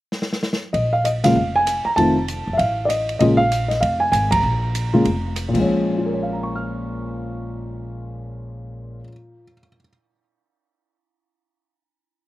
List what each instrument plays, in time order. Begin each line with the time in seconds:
0.12 snare
0.22 snare
0.33 snare
0.43 snare
0.53 snare
0.73 upright bass A#1, grand piano D#5, kick, ride
0.93 grand piano F5
1.05 grand piano D#5, hi-hat pedal, ride
1.24 grand piano C#3 G#3 A#3 F4 F5, snare, ride
1.35 upright bass F1
1.56 grand piano G#5
1.67 cross-stick, hi-hat pedal, ride
1.85 grand piano A#5, muted upright bass stroke
1.96 upright bass F1, grand piano D#3 A3 C4 F4 A5, kick, ride
2.28 hi-hat pedal, ride
2.47 upright bass F#1
2.53 grand piano E5
2.58 upright bass A1, grand piano F5, kick, ride
2.85 grand piano D5 D#5
2.90 cross-stick, hi-hat pedal, ride
3.09 ride
3.19 upright bass A#1, grand piano C#3 G#3 A#3 F4 D#5, kick, ride
3.37 grand piano F5
3.52 hi-hat pedal, ride
3.68 grand piano D#5, snare, ride
3.81 upright bass F1, grand piano F5, kick, ride
4.00 grand piano G#5
4.12 upright bass G#1, grand piano G#5, cross-stick, hi-hat pedal, ride
4.31 grand piano A#5, kick, ride
4.43 upright bass A#1
4.75 hi-hat pedal, ride
4.94 grand piano C#3 G#3 A#3 F4
5.05 upright bass F1, kick, ride
5.36 cross-stick, hi-hat pedal, ride
5.49 grand piano A#2
5.53 upright bass A#1, grand piano F3 G#3, kick, crash
5.61 grand piano C#4
5.98 grand piano F4
6.06 grand piano A#4
6.13 grand piano C#5
6.23 grand piano F5
6.32 grand piano A#5
6.43 grand piano C#6
6.55 grand piano F6